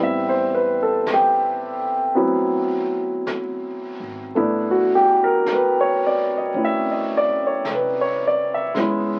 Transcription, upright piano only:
0.00 2.16 G3 soft
0.00 2.14 B3 soft
0.00 2.15 C4 soft
0.00 2.15 E4 medium
0.00 0.36 E5 medium
0.29 0.68 C5 medium
0.54 0.80 B4 medium
0.83 1.03 A4 medium
1.14 2.16 G4 medium
2.15 4.35 F#3 medium
2.15 4.35 B3 medium
2.15 4.36 C4 soft
2.15 4.35 E4 medium
4.35 8.74 A3 medium
4.35 8.75 B3 medium
4.35 8.75 D4 soft
4.35 6.56 E4 medium
4.71 5.08 F#4 medium
4.95 5.19 G4 medium
5.24 5.43 A#4 medium
5.54 5.86 B4 medium
5.81 6.17 C#5 medium
6.07 6.30 D5 medium
6.37 6.54 D#5 medium
6.55 8.74 C#4 soft
6.55 8.76 E4 soft
6.65 6.96 E5 medium
6.92 7.28 D#5 medium
7.17 7.40 D5 medium
7.47 7.64 C#5 medium
7.74 8.06 B4 medium
8.01 8.38 C#5 medium
8.27 8.50 D5 medium
8.54 9.20 E5 medium
8.74 9.20 G#3 medium
8.74 9.20 B3 soft
8.74 9.20 C#4 soft
8.79 9.20 E4 medium

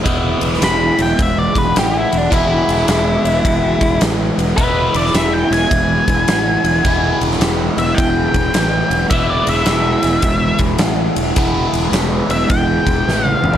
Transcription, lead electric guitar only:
0.64 1.00 B5 loud
1.02 1.20 G5 medium
1.22 1.38 E5 medium
1.38 1.58 D5 medium
1.58 1.76 B4 medium
1.79 1.96 G4 medium
1.98 2.18 E4 medium
2.18 2.33 D4 medium
2.34 3.99 E4 medium
4.57 4.94 B4 medium
4.96 5.15 D5 medium
5.15 5.33 E5 medium
5.33 5.52 G5 medium
5.53 7.19 G#5 loud
7.79 7.97 E5 medium
7.95 9.06 G5 loud
9.10 9.30 E5 medium
9.30 9.48 D5 medium
9.49 10.59 E5 loud
12.31 12.49 E5 loud
12.51 13.27 G5 loud
13.27 13.57 F5 loud

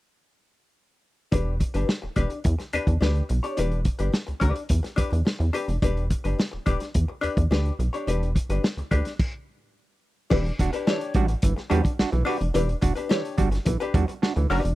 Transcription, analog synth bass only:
1.32 1.63 E1 loud
1.75 1.85 G1 medium
2.03 2.09 E1 soft
2.17 2.27 E1 medium
2.45 2.55 E2 loud
2.74 2.79 E2 soft
2.87 2.97 E2 medium
3.02 3.22 D2 medium
3.30 3.40 B1 medium
3.59 3.89 E1 loud
4.00 4.10 G1 medium
4.28 4.34 D2 medium
4.42 4.52 D2 medium
4.70 4.80 E2 loud
4.98 5.04 E2 soft
5.12 5.23 E2 loud
5.40 5.50 E2 loud
5.68 5.79 F1 medium
5.83 6.13 E1 loud
6.25 6.35 G1 medium
6.53 6.59 E1 soft
6.67 6.77 E1 medium
6.95 7.05 E2 medium
7.24 7.29 E2 soft
7.37 7.47 E2 loud
7.51 7.71 D2 medium
7.79 7.89 B1 medium
8.08 8.38 E1 loud
8.50 8.60 G1 medium
8.77 8.83 D2 soft
8.92 9.02 D2 medium
10.31 10.51 E1 loud
10.60 10.70 E1 medium
11.15 11.35 A1 medium
11.43 11.53 G1 loud
11.71 11.81 E2 loud
12.00 12.05 B1 soft
12.13 12.23 B1 medium
12.41 12.51 F1 medium
12.55 12.75 E1 loud
12.83 12.93 E1 loud
13.38 13.59 G1 medium
13.67 13.77 B1 medium
13.94 14.04 E2 loud
14.37 14.47 D2 loud
14.50 14.60 F#1 loud
14.65 14.75 F1 medium

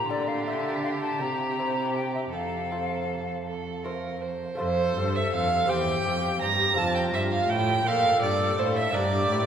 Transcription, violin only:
0.00 2.29 G4 medium
2.32 3.37 A4 medium
3.45 3.86 A4 medium
3.85 4.24 A#4 medium
4.22 4.60 C5 medium
4.60 5.17 C5 medium
5.16 5.32 E5 medium
5.33 5.71 F5 medium
5.70 6.42 G5 loud
6.42 6.80 A#5 loud
6.78 6.95 A5 loud
6.95 7.03 G5 medium
7.14 7.21 E5 loud
7.32 7.52 F5 medium
7.50 7.88 G5 loud
7.87 8.21 F5 loud
8.22 8.61 D5 medium
8.59 8.78 C5 medium
8.76 8.96 E5 medium
8.94 9.46 D5 loud

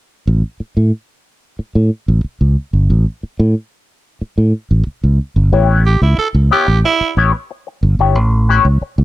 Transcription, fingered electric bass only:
0.27 0.41 A1 medium
0.60 muted fingered electric bass stroke soft
0.77 0.91 A2 medium
1.59 muted fingered electric bass stroke soft
1.75 1.89 A2 medium
2.08 2.22 A1 medium
2.24 muted fingered electric bass stroke soft
2.41 2.55 C#2 medium
2.73 2.87 G1 medium
2.90 3.04 A1 loud
3.23 muted fingered electric bass stroke soft
3.39 3.54 A2 medium
4.21 muted fingered electric bass stroke soft
4.38 4.52 A2 medium
4.71 4.85 A1 medium
4.87 muted fingered electric bass stroke soft
5.04 5.18 C#2 medium
5.36 5.50 G1 medium
5.53 5.95 A1 medium
6.02 6.16 C#2 medium
6.34 6.49 C#2 loud
6.68 6.82 A1 medium
7.01 muted fingered electric bass stroke soft
7.17 7.31 A1 medium
7.83 7.97 G1 medium
7.99 8.15 G1 medium
8.15 8.58 A1 loud
8.65 8.79 C#2 medium
8.81 muted fingered electric bass stroke soft
8.98 9.04 C#2 medium

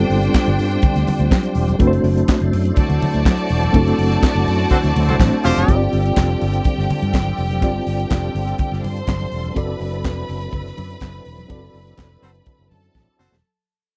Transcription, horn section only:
4.71 4.79 C4 medium
4.71 4.79 F#4 medium
4.71 4.79 A4 medium
4.71 4.79 C5 medium
5.08 5.16 C4 medium
5.08 5.16 F#4 medium
5.08 5.16 A4 medium
5.08 5.16 C5 medium
5.44 5.76 C4 loud
5.44 5.76 F4 loud
5.44 5.75 G4 loud
5.44 5.76 C5 loud
12.23 12.31 C4 medium
12.23 12.31 F#4 medium
12.23 12.31 A4 medium
12.23 12.31 C5 loud
13.19 13.34 C4 medium
13.19 13.35 F#4 medium
13.19 13.35 A4 loud
13.19 13.34 C5 loud

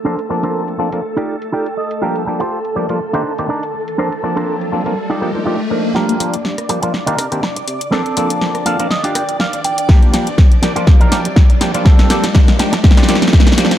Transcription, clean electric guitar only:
0.05 0.18 D4 loud
0.05 0.19 A4 loud
0.05 0.19 A#4 loud
0.05 0.19 C5 loud
0.29 muted clean electric guitar stroke medium
0.43 0.61 D4 medium
0.43 0.61 A4 medium
0.43 0.61 A#4 medium
0.43 0.61 C5 medium
0.79 muted clean electric guitar stroke soft
1.17 1.35 D#4 loud
1.17 1.35 F4 medium
1.17 1.35 G4 loud
1.17 1.35 D5 loud
1.52 1.66 D#4 medium
1.52 1.66 F4 medium
1.52 1.66 G4 medium
1.52 1.67 D5 medium
1.52 1.76 G5 medium
1.77 2.00 D#5 medium
1.77 muted clean electric guitar stroke soft
2.02 2.15 F4 loud
2.02 2.16 G4 loud
2.02 2.16 A#4 loud
2.26 muted clean electric guitar stroke medium
2.40 2.58 F4 medium
2.40 2.58 G4 medium
2.40 2.58 C5 medium
2.76 muted clean electric guitar stroke soft
3.13 3.32 D4 loud
3.13 3.32 D#4 loud
3.13 3.32 A#4 medium
3.13 3.32 C5 loud
3.49 3.63 D4 medium
3.49 3.63 D#4 medium
3.49 3.63 A#4 medium
3.49 3.63 D5 medium
3.74 muted clean electric guitar stroke soft
3.98 4.12 D4 loud
3.98 4.12 A4 loud
3.98 4.12 A#4 loud
3.98 4.12 C5 loud
4.23 muted clean electric guitar stroke medium
4.36 4.54 D4 medium
4.36 4.54 A4 medium
4.36 4.55 A#4 medium
4.36 4.55 C5 medium
4.72 muted clean electric guitar stroke soft
5.10 5.28 D#4 loud
5.10 5.28 F4 medium
5.10 5.28 G4 medium
5.10 5.29 D5 loud
5.45 5.59 D#4 medium
5.45 5.60 F4 medium
5.45 5.60 G4 medium
5.45 5.60 D5 medium
5.70 muted clean electric guitar stroke soft
5.95 6.33 F4 loud
5.95 6.33 G4 loud
5.95 6.34 A#4 loud
6.69 muted clean electric guitar stroke medium
6.82 muted clean electric guitar stroke medium
6.93 muted clean electric guitar stroke soft
7.06 7.25 D4 loud
7.06 7.25 D#4 loud
7.06 7.25 A#4 loud
7.42 muted clean electric guitar stroke medium
7.56 muted clean electric guitar stroke soft
7.92 8.30 C4 loud
7.92 8.30 D4 loud
7.92 8.30 A4 loud
8.66 8.89 F5 medium
8.66 muted clean electric guitar stroke medium
8.79 muted clean electric guitar stroke medium
8.90 9.14 D#5 medium
8.90 muted clean electric guitar stroke soft
9.04 9.22 D4 loud
9.04 9.22 F4 loud
9.04 9.22 G4 loud
9.16 9.38 G5 medium
9.39 9.63 F5 medium
9.39 muted clean electric guitar stroke medium
9.53 muted clean electric guitar stroke soft
9.65 9.87 G5 medium
9.89 10.27 A#3 loud
9.89 10.27 F4 loud
9.89 10.27 G4 loud
10.62 muted clean electric guitar stroke medium
10.76 muted clean electric guitar stroke medium
10.87 muted clean electric guitar stroke soft
11.00 11.18 D4 loud
11.00 11.19 D#4 loud
11.00 11.19 A#4 loud
11.36 muted clean electric guitar stroke medium
11.49 muted clean electric guitar stroke soft
11.85 12.23 C4 loud
11.85 12.23 D4 loud
11.85 12.24 A4 loud
12.59 muted clean electric guitar stroke medium
12.72 muted clean electric guitar stroke medium
12.84 muted clean electric guitar stroke soft
12.97 13.15 D4 loud
12.97 13.15 F4 loud
12.97 13.16 G4 loud
13.33 muted clean electric guitar stroke medium
13.46 muted clean electric guitar stroke soft

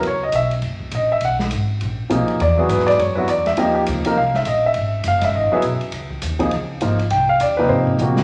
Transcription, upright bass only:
0.04 0.32 C#2 medium
0.32 0.62 B1 medium
0.62 0.91 F#1 medium
0.92 1.21 A#1 medium
1.21 1.50 B1 medium
1.52 1.80 G#1 medium
1.82 2.10 A#1 medium
2.11 2.21 B1 medium
2.21 2.30 A#1 medium
2.30 2.39 F#1 medium
2.40 2.69 E2 medium
2.69 2.98 G#2 medium
2.98 3.27 F#2 medium
3.28 3.57 E2 medium
3.57 3.86 D#2 medium
3.87 4.04 C#2 loud
4.05 muted upright bass stroke soft
4.16 4.45 C2 medium
4.46 4.74 A#1 medium
4.76 5.04 G#1 medium
5.04 5.33 F#1 medium
5.34 5.51 G#1 medium
5.52 muted upright bass stroke soft
5.63 5.80 B1 medium
5.81 muted upright bass stroke soft
5.93 6.21 C#2 medium
6.23 6.51 D#2 medium
6.52 6.80 C#2 medium
6.82 7.10 G#1 medium
7.11 7.39 C2 medium
7.41 7.68 D#2 medium
7.69 7.97 G#2 medium
7.99 8.23 A#2 medium

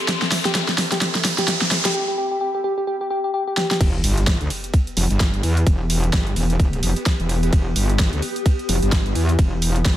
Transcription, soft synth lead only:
0.45 0.51 G4 medium
0.92 0.98 G4 medium
1.38 1.45 G4 medium
1.85 1.91 G4 loud
1.95 2.03 G4 medium
2.08 2.14 G4 medium
2.18 2.27 G4 medium
2.31 2.38 G4 medium
2.41 2.50 G4 medium
2.55 2.61 G4 medium
2.64 2.73 G4 medium
2.78 2.84 G4 medium
2.87 2.96 G4 medium
3.01 3.07 G4 medium
3.10 3.19 G4 medium
3.24 3.30 G4 medium
3.34 3.43 G4 medium
3.47 3.54 G4 medium
3.57 3.66 G4 medium
3.71 3.77 G4 medium

